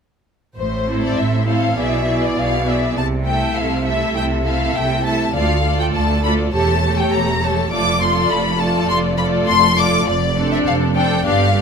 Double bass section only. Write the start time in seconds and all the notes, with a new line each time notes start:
0.57 A1
1.17 A1
1.77 B1
2.36 B1
2.96 C2
3.56 C2
4.16 C2
4.75 C2
5.34 D2
5.94 D2
6.54 E1
7.13 E1
7.72 F1
8.31 F1
8.89 F1
9.48 F1
10.07 F1
10.66 F1
11.27 G1